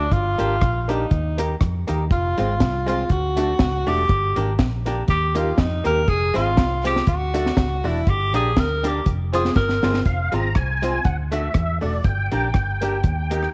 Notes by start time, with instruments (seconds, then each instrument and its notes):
Already playing: tenor saxophone D4
0.12 fingered electric bass G1, tenor saxophone F4, kick, closed hi-hat
0.38 fingered electric bass G#1, upright piano A#3 D4 G4 A#4, hollow-body jazz guitar A#3 D4 G4, closed hi-hat
0.61 fingered electric bass A#1, kick, cross-stick, closed hi-hat
0.82 tenor saxophone F4
0.88 upright piano A#3 D4 G4 A#4, hollow-body jazz guitar A#3 D4 G4, tenor saxophone D#4, closed hi-hat
1.11 fingered electric bass D#2, kick, closed hi-hat
1.38 upright piano A#3 D#4 G4 A#4, hollow-body jazz guitar A#3 D#4 G4, closed hi-hat
1.61 fingered electric bass F2, kick, cross-stick, closed hi-hat
1.87 fingered electric bass D#2, upright piano A#3 D#4 G4 A#4, hollow-body jazz guitar A#3 D#4 G4, closed hi-hat
2.11 fingered electric bass F1, tenor saxophone F4, kick, closed hi-hat
2.37 fingered electric bass G#1, upright piano G#3 C4 F4 G#4, hollow-body jazz guitar G#3 C4 F4, closed hi-hat
2.60 fingered electric bass C2, kick, snare, closed hi-hat
2.86 hollow-body jazz guitar G#3 C4 F4, upright piano G#3 C4 F4 G#4, tenor saxophone F4, closed hi-hat
3.09 fingered electric bass D2, tenor saxophone F#4, kick, closed hi-hat
3.37 hollow-body jazz guitar A3 D4 F#4, upright piano A3 D4 F#4 A4, closed hi-hat
3.59 fingered electric bass C#2, kick, snare, closed hi-hat
3.86 fingered electric bass E1, upright piano A3 D4 F#4 A4, hollow-body jazz guitar A3 D4 F#4, tenor saxophone G4, open hi-hat
4.09 fingered electric bass G1, kick, closed hi-hat
4.36 fingered electric bass G#1, hollow-body jazz guitar A#3 D4 G4, upright piano A#3 D4 G4 A#4, closed hi-hat
4.59 fingered electric bass A#1, kick, snare, closed hi-hat
4.86 upright piano A#3 D4 G4 A#4, hollow-body jazz guitar A#3 D4 G4, closed hi-hat
5.08 fingered electric bass D#2, tenor saxophone G4, kick, closed hi-hat
5.35 hollow-body jazz guitar A#3 D#4 G4, upright piano A#3 D#4 G4 A#4, tenor saxophone F4, closed hi-hat
5.58 fingered electric bass F2, tenor saxophone D#4, kick, snare, closed hi-hat
5.84 fingered electric bass D#2, hollow-body jazz guitar A#3 D#4 G4, upright piano A#3 D#4 G4 A#4, tenor saxophone A#4, closed hi-hat
6.08 fingered electric bass F1, tenor saxophone G#4, kick, closed hi-hat
6.34 fingered electric bass G#1, hollow-body jazz guitar G#3 C4 F4, upright piano C4 F4 G#4 C5, tenor saxophone F4, closed hi-hat
6.57 fingered electric bass C2, kick, snare, closed hi-hat
6.84 hollow-body jazz guitar G#3 C4 F4, upright piano C4 F4 G#4 C5, tenor saxophone G4, closed hi-hat
6.96 snare
7.07 fingered electric bass D2, tenor saxophone F#4, kick, closed hi-hat
7.34 hollow-body jazz guitar A3 D4 F#4, upright piano D4 F#4 A4 D5, closed hi-hat
7.46 snare
7.57 fingered electric bass C#2, kick, snare, closed hi-hat
7.84 fingered electric bass E1, hollow-body jazz guitar A3 D4 F#4, upright piano D4 F#4 A4 D5, tenor saxophone E4, open hi-hat
8.07 fingered electric bass G1, tenor saxophone G4, kick, closed hi-hat
8.34 fingered electric bass A#1, hollow-body jazz guitar A#3 D4 G4, upright piano D4 G4 A#4 D5, tenor saxophone G#4, closed hi-hat
8.57 fingered electric bass D2, tenor saxophone A#4, kick, snare, closed hi-hat
8.83 hollow-body jazz guitar A#3 D4 G4, upright piano D4 G4 A#4 D5, closed hi-hat
8.87 tenor saxophone G4
9.06 fingered electric bass F1, kick, closed hi-hat
9.32 hollow-body jazz guitar G#3 C4 F4, upright piano C4 F4 G#4 C5, tenor saxophone G#4, closed hi-hat
9.45 snare
9.56 fingered electric bass G1, tenor saxophone A#4, kick, snare
9.69 snare
9.82 fingered electric bass G1, hollow-body jazz guitar G#3 C4 F4, upright piano C4 F4 G#4 C5, snare
9.94 snare
10.05 fingered electric bass F1, tonewheel organ F5, kick, closed hi-hat
10.32 fingered electric bass G#1, hollow-body jazz guitar G#3 C4 F4, upright piano C4 F4 G#4 C5, tonewheel organ A#5, closed hi-hat
10.55 fingered electric bass C2, tonewheel organ G#5, kick, cross-stick, closed hi-hat
10.82 hollow-body jazz guitar G#3 C4 F4, upright piano C4 F4 G#4 C5, closed hi-hat
11.05 fingered electric bass D2, tonewheel organ F#5, kick, closed hi-hat
11.32 hollow-body jazz guitar A3 D4 F#4, upright piano A3 D4 F#4 A4, tonewheel organ E5, closed hi-hat
11.54 fingered electric bass E2, kick, cross-stick, closed hi-hat
11.81 fingered electric bass E1, hollow-body jazz guitar A3 D4 F#4, upright piano A3 D4 F#4 A4, tonewheel organ D5, open hi-hat
12.04 fingered electric bass G1, tonewheel organ G5, kick, closed hi-hat
12.32 fingered electric bass A#1, upright piano A#3 D4 G4 A#4, hollow-body jazz guitar A#3 D4 G4, closed hi-hat
12.54 fingered electric bass G1, kick, cross-stick, closed hi-hat
12.81 upright piano A#3 D4 G4 A#4, hollow-body jazz guitar A#3 D4 G4, closed hi-hat
13.04 fingered electric bass D#2, kick, closed hi-hat
13.30 upright piano A#3 D#4 G4 A#4, hollow-body jazz guitar A#3 D#4 G4, closed hi-hat
13.43 cross-stick